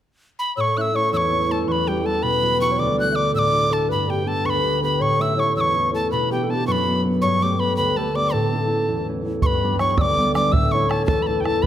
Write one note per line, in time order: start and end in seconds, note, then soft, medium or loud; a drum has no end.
0.39 0.55 B5 medium
0.56 1.17 A2 medium
0.56 0.75 C#5 medium
0.56 0.62 E6 medium
0.61 0.79 C#6 medium
0.76 0.94 A3 soft
0.76 0.94 C#4 soft
0.76 0.95 E4 medium
0.76 0.96 E5 medium
0.76 0.82 F#6 medium
0.81 0.97 E6 medium
0.94 1.31 A3 soft
0.94 1.31 C#4 soft
0.94 1.32 E4 medium
0.94 1.11 C#5 medium
0.94 1.13 C#6 loud
1.12 1.66 E2 medium
1.12 1.47 C#5 loud
1.12 1.18 E6 medium
1.17 1.53 C#6 medium
1.31 1.49 A3 soft
1.31 1.50 C#4 soft
1.31 1.50 E4 medium
1.50 2.97 A3 soft
1.50 2.85 C#4 soft
1.50 1.87 E4 soft
1.50 1.70 A4 medium
1.50 1.70 A5 medium
1.67 2.83 E2 medium
1.67 1.90 B4 medium
1.67 1.73 C#6 medium
1.72 1.89 B5 medium
1.87 2.04 G3 soft
1.87 2.05 E4 soft
1.87 2.06 F#4 medium
1.87 2.06 G4 medium
1.87 2.07 G5 medium
2.04 2.42 G3 soft
2.04 2.43 E4 soft
2.04 2.43 F#4 soft
2.04 2.24 A4 medium
2.04 2.24 A5 medium
2.22 2.83 B2 medium
2.22 2.73 B4 medium
2.22 2.61 B5 loud
2.43 2.60 G3 medium
2.43 2.61 E4 soft
2.43 2.62 F#4 medium
2.61 2.83 G3 soft
2.61 5.20 E4 soft
2.61 2.98 F#4 soft
2.61 2.81 C#6 medium
2.71 2.79 C#5 medium
2.78 3.94 D2 medium
2.78 3.11 D5 medium
2.78 2.99 D6 medium
2.97 3.15 A3 medium
2.97 3.15 D4 soft
2.97 3.15 F#4 medium
2.97 3.17 F#6 medium
3.11 3.52 A3 soft
3.11 3.17 E5 medium
3.15 3.52 D4 soft
3.15 3.52 F#4 medium
3.15 3.33 D5 medium
3.15 3.33 D6 loud
3.33 3.94 A2 medium
3.33 3.72 D5 medium
3.33 3.40 E6 medium
3.39 3.75 D6 loud
3.52 3.70 A3 medium
3.52 3.70 D4 soft
3.52 3.71 F#4 medium
3.71 5.19 A3 soft
3.71 4.07 D4 soft
3.71 3.94 F#4 soft
3.71 3.90 A4 medium
3.71 3.90 A5 medium
3.88 4.50 G2 medium
3.88 4.09 B4 medium
3.88 4.12 B5 medium
4.07 4.24 B3 soft
4.07 4.25 D4 soft
4.07 4.25 G4 soft
4.07 4.26 G4 medium
4.07 4.29 G5 medium
4.25 4.63 B3 soft
4.25 4.63 D4 soft
4.25 4.64 G4 medium
4.25 4.46 A4 medium
4.25 4.47 A5 medium
4.44 5.05 D2 medium
4.44 4.82 B4 medium
4.44 4.51 C#6 medium
4.50 4.83 B5 medium
4.63 4.81 B3 soft
4.63 4.81 D4 soft
4.63 4.82 G4 soft
4.81 6.31 B3 soft
4.81 5.26 D4 soft
4.81 6.38 G4 medium
4.81 5.02 B4 medium
4.81 5.03 B5 medium
5.00 5.60 A2 medium
5.00 5.22 C#5 medium
5.00 5.23 C#6 medium
5.19 5.37 A3 soft
5.19 5.38 C#4 soft
5.19 5.38 E4 medium
5.19 5.36 E5 medium
5.19 5.41 E6 medium
5.36 5.75 A3 soft
5.36 5.76 C#4 soft
5.36 5.76 E4 soft
5.36 5.53 C#5 medium
5.36 5.56 C#6 medium
5.55 6.16 E2 medium
5.55 5.90 C#5 medium
5.55 5.62 E6 medium
5.61 5.91 C#6 medium
5.75 5.93 A3 soft
5.75 5.94 C#4 soft
5.75 5.95 E4 medium
5.92 7.41 A3 soft
5.92 6.38 C#4 soft
5.92 8.52 E4 soft
5.92 6.13 A4 medium
5.92 6.10 A5 medium
6.11 6.71 B2 medium
6.11 6.33 B4 medium
6.11 6.30 B5 medium
6.31 6.48 B3 medium
6.31 6.49 D4 soft
6.31 6.49 F#4 medium
6.31 6.45 G4 medium
6.31 6.52 G5 medium
6.44 6.56 A4 medium
6.48 6.87 B3 soft
6.48 6.88 D4 soft
6.48 6.88 F#4 soft
6.48 6.67 A5 medium
6.54 6.66 G4 medium
6.67 7.26 F#2 medium
6.67 7.01 B4 medium
6.67 6.73 C#6 medium
6.72 7.02 B5 medium
6.87 7.05 B3 soft
6.87 7.05 D4 medium
6.87 7.05 F#4 soft
7.05 7.42 B3 soft
7.05 8.58 D4 soft
7.05 7.29 F#4 soft
7.21 7.81 G2 medium
7.21 7.40 C#5 medium
7.21 7.44 C#6 medium
7.42 7.58 A3 medium
7.42 7.59 B3 soft
7.42 7.60 G4 medium
7.42 7.61 D6 medium
7.59 7.96 A3 soft
7.59 7.97 B3 soft
7.59 7.97 G4 soft
7.59 7.75 B4 medium
7.59 7.76 B5 medium
7.77 8.37 D2 medium
7.77 7.99 B4 medium
7.77 7.98 B5 medium
7.96 8.13 A3 medium
7.96 8.14 B3 soft
7.96 8.14 G4 medium
7.96 8.17 A4 medium
7.96 8.17 A5 medium
8.14 8.51 A3 soft
8.14 9.63 B3 soft
8.14 10.50 G4 soft
8.14 8.35 D5 medium
8.14 8.34 D6 medium
8.32 8.92 A2 medium
8.32 9.08 A4 medium
8.32 9.07 A5 medium
8.52 8.69 A3 soft
8.52 8.70 C#4 soft
8.52 8.70 E4 medium
8.70 9.07 A3 medium
8.70 9.08 C#4 soft
8.70 9.08 E4 soft
8.88 9.47 E2 medium
9.08 9.24 A3 medium
9.08 9.25 C#4 soft
9.08 9.25 E4 medium
9.25 10.72 A3 soft
9.25 9.70 C#4 soft
9.25 10.73 E4 soft
9.42 10.02 G2 medium
9.42 9.82 B4 medium
9.42 9.47 C#6 medium
9.42 bodhran medium
9.46 9.77 B5 medium
9.63 9.79 G3 soft
9.63 9.80 B3 soft
9.63 9.80 D4 medium
9.79 10.16 G3 soft
9.79 10.17 B3 soft
9.79 10.18 D4 soft
9.79 9.97 C#5 medium
9.79 9.91 C#6 medium
9.79 bodhran medium
9.91 9.99 C#6 medium
9.97 10.58 D2 medium
9.97 10.33 D5 medium
9.97 10.34 D6 loud
9.97 10.02 E6 medium
9.97 bodhran medium
10.17 10.33 G3 medium
10.17 10.35 B3 soft
10.17 10.35 D4 medium
10.17 bodhran soft
10.34 10.58 G3 soft
10.34 11.66 B3 soft
10.34 10.79 D4 soft
10.34 10.55 D5 medium
10.34 10.54 D6 medium
10.34 bodhran medium
10.52 11.13 A2 medium
10.52 10.75 E5 medium
10.52 10.73 E6 medium
10.52 bodhran medium
10.71 10.90 A3 medium
10.71 10.91 C#4 soft
10.71 10.91 E4 medium
10.71 11.10 C#5 medium
10.71 10.91 C#6 medium
10.90 11.27 A3 medium
10.90 11.28 C#4 soft
10.90 11.28 E4 medium
10.90 11.05 A5 medium
10.90 bodhran medium
11.06 11.66 E2 medium
11.06 11.28 A4 medium
11.06 11.24 A5 loud
11.06 bodhran loud
11.22 11.28 B5 medium
11.27 11.44 A3 medium
11.27 11.45 C#4 medium
11.27 11.45 E4 medium
11.27 11.45 A4 medium
11.27 11.42 A5 medium
11.27 bodhran soft
11.41 11.46 G5 medium
11.41 11.64 A5 medium
11.45 11.66 A3 soft
11.45 11.66 C#4 soft
11.45 11.66 E4 medium
11.45 11.65 A4 medium
11.45 bodhran medium
11.62 11.66 D2 medium
11.62 11.66 B5 medium